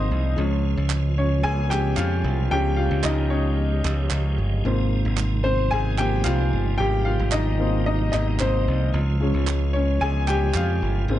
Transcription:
0.00 0.34 C3 medium
0.00 0.36 F3 medium
0.00 8.90 F3 medium
0.00 6.76 G#3 medium
0.00 0.40 A#3 medium
0.00 0.40 C4 medium
0.00 0.34 D#4 medium
0.00 0.40 D#4 medium
0.00 0.39 F4 medium
0.00 0.39 G4 medium
0.00 0.22 C5 medium
0.00 0.40 D#5 loud
0.00 0.40 F5 medium
0.00 0.39 G5 loud
0.11 0.36 C2 loud
0.36 0.75 C#2 loud
0.36 4.61 C#3 medium
0.36 1.13 F3 medium
0.36 1.13 G#3 medium
0.36 1.14 C#4 medium
0.36 2.49 F4 medium
0.77 1.41 C#2 loud
0.90 clap loud
1.18 1.43 C#4 medium
1.18 1.45 C#5 medium
1.43 1.94 C#2 loud
1.43 1.69 G#4 medium
1.43 1.69 G#5 loud
1.70 1.95 F3 medium
1.70 1.95 G#3 medium
1.70 1.95 C#4 medium
1.70 1.96 G4 medium
1.70 1.96 G5 loud
1.70 clap medium
1.96 2.23 F2 loud
1.96 2.35 F4 medium
1.96 2.35 F5 loud
1.96 clap medium
2.24 2.49 C2 loud
2.51 2.89 C#2 loud
2.51 4.61 F3 medium
2.51 4.62 G#3 medium
2.51 3.30 C#4 medium
2.51 4.64 G4 medium
2.51 2.77 G4 medium
2.51 2.79 G5 loud
2.76 3.03 F4 medium
2.76 3.05 F5 medium
2.91 3.04 C#2 loud
3.03 3.81 C#2 loud
3.03 3.11 D#4 medium
3.03 3.10 D#5 medium
3.03 clap loud
3.30 4.08 C#4 medium
3.30 4.07 C#5 medium
3.85 4.10 C#2 loud
3.85 clap medium
4.10 4.36 C#2 medium
4.10 clap medium
4.38 4.63 G1 medium
4.65 5.03 G#1 loud
4.65 8.90 C3 medium
4.65 5.01 F3 medium
4.65 5.01 A#3 soft
4.65 5.01 C4 medium
4.65 8.90 D#4 medium
5.05 5.69 G#1 loud
5.17 clap loud
5.44 5.71 C4 medium
5.44 5.70 C5 medium
5.71 6.22 G#1 loud
5.71 5.98 G#4 medium
5.71 5.99 G#5 loud
5.98 6.23 F3 medium
5.98 6.23 A#3 soft
5.98 6.24 C4 medium
5.98 6.25 G4 medium
5.98 6.27 G5 loud
5.98 clap medium
6.24 6.51 C2 loud
6.24 6.63 F4 medium
6.24 6.62 F5 loud
6.24 clap medium
6.53 6.78 G1 medium
6.78 7.17 G#1 loud
6.78 8.91 G3 medium
6.78 7.05 G4 medium
6.78 7.06 G5 loud
7.05 7.32 F4 medium
7.05 7.33 F5 loud
7.20 7.32 G#1 loud
7.32 8.10 G#1 loud
7.32 7.83 D#4 medium
7.32 7.85 D#5 loud
7.32 clap loud
7.59 8.89 F3 medium
7.59 8.90 A#3 medium
7.59 8.40 C4 medium
7.86 8.11 D#4 medium
7.86 8.10 D#5 loud
8.12 8.39 G#1 loud
8.12 8.19 D#4 medium
8.12 8.18 D#5 medium
8.12 clap medium
8.39 8.66 G#1 loud
8.39 8.78 C4 medium
8.39 8.78 C5 medium
8.39 clap medium
8.68 8.93 C2 medium
8.92 9.31 C#2 loud
8.92 11.06 C#3 medium
8.92 11.06 F3 medium
8.92 11.05 G#3 medium
8.92 11.05 F4 medium
9.20 9.97 F3 medium
9.20 9.97 G#3 medium
9.20 9.74 C#4 medium
9.34 9.98 C#2 loud
9.47 clap loud
9.73 10.00 C#4 medium
9.73 10.01 C#5 medium
10.01 10.51 C#2 loud
10.01 10.27 G#4 medium
10.01 10.29 G#5 loud
10.27 10.54 G4 medium
10.27 10.53 G5 loud
10.27 clap medium
10.54 10.80 F2 loud
10.54 10.94 F4 medium
10.54 10.93 F5 medium
10.54 clap loud
10.82 11.07 G1 medium
11.08 11.19 G#1 loud
11.08 11.19 C3 medium
11.08 11.19 G#3 medium
11.08 11.19 A#3 medium
11.08 11.19 C4 medium
11.08 11.19 D#4 medium

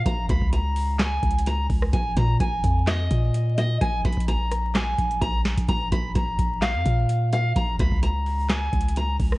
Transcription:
0.06 0.28 A#1 loud
0.06 0.25 A#5 medium
0.06 kick loud
0.06 closed hi-hat medium
0.29 1.19 C#2 loud
0.29 0.49 B5 medium
0.29 kick loud
0.29 closed hi-hat medium
0.42 kick loud
0.53 0.97 A#5 medium
0.53 closed hi-hat medium
0.76 open hi-hat medium
0.99 1.44 G#5 loud
0.99 snare loud
0.99 clap medium
0.99 closed hi-hat medium
1.23 1.68 C#2 loud
1.23 kick medium
1.23 closed hi-hat soft
1.31 closed hi-hat medium
1.39 closed hi-hat medium
1.47 1.66 A#5 medium
1.47 closed hi-hat medium
1.70 1.93 C#2 loud
1.70 kick loud
1.70 open hi-hat medium
1.82 cross-stick loud
1.93 2.16 A#1 loud
1.93 2.12 G#5 medium
1.93 kick loud
1.93 closed hi-hat medium
2.17 2.39 A#2 loud
2.17 2.36 A#5 medium
2.17 kick loud
2.17 closed hi-hat medium
2.40 2.63 A#1 loud
2.40 2.84 G#5 medium
2.40 kick medium
2.40 closed hi-hat medium
2.64 3.09 F2 loud
2.64 kick loud
2.64 closed hi-hat medium
2.87 3.54 D#5 medium
2.87 snare loud
2.87 clap medium
2.87 closed hi-hat medium
3.11 3.78 A#2 loud
3.11 kick medium
3.11 closed hi-hat medium
3.34 closed hi-hat medium
3.57 3.76 D#5 medium
3.57 closed hi-hat medium
3.81 4.03 A#1 loud
3.81 4.00 G#5 medium
3.81 kick loud
3.81 closed hi-hat medium
4.04 4.94 A#1 loud
4.04 4.23 B5 medium
4.04 kick medium
4.04 closed hi-hat soft
4.12 closed hi-hat medium
4.17 kick loud
4.17 closed hi-hat medium
4.28 4.72 A#5 medium
4.28 closed hi-hat medium
4.51 cross-stick medium
4.51 closed hi-hat medium
4.75 5.19 G#5 medium
4.75 snare loud
4.75 clap medium
4.75 closed hi-hat medium
4.98 5.21 A#1 loud
4.98 kick medium
4.98 closed hi-hat medium
5.11 closed hi-hat medium
5.21 5.56 A#1 loud
5.21 5.40 A#5 medium
5.21 kick medium
5.21 closed hi-hat medium
5.45 snare loud
5.45 closed hi-hat soft
5.57 5.68 A#1 loud
5.57 kick loud
5.57 closed hi-hat medium
5.68 5.91 A#1 loud
5.68 5.87 A#5 medium
5.68 kick loud
5.68 closed hi-hat medium
5.92 6.14 A#1 loud
5.92 6.11 B5 loud
5.92 kick medium
5.92 closed hi-hat medium
6.15 6.38 A#1 loud
6.15 6.59 A#5 medium
6.15 kick medium
6.15 closed hi-hat medium
6.39 6.76 A#1 loud
6.39 kick loud
6.39 closed hi-hat medium
6.62 7.28 F5 medium
6.62 snare loud
6.62 clap medium
6.62 closed hi-hat medium
6.75 6.85 F2 loud
6.86 7.53 A#2 loud
6.86 kick medium
6.86 closed hi-hat medium
7.09 closed hi-hat medium
7.33 7.52 F5 medium
7.33 closed hi-hat medium
7.56 7.78 A#1 loud
7.56 7.75 A#5 medium
7.56 kick loud
7.56 closed hi-hat medium
7.79 8.69 C#2 loud
7.79 7.99 B5 medium
7.79 kick loud
7.79 closed hi-hat medium
7.92 kick loud
8.03 8.47 A#5 medium
8.03 closed hi-hat medium
8.26 open hi-hat medium
8.50 8.94 G#5 loud
8.50 snare loud
8.50 clap medium
8.50 closed hi-hat medium
8.73 9.18 C#2 loud
8.73 kick loud
8.73 closed hi-hat soft
8.81 closed hi-hat medium
8.89 closed hi-hat medium
8.97 9.16 A#5 medium
8.97 closed hi-hat medium
9.20 9.38 C#2 loud
9.20 kick loud
9.20 open hi-hat medium
9.32 cross-stick loud

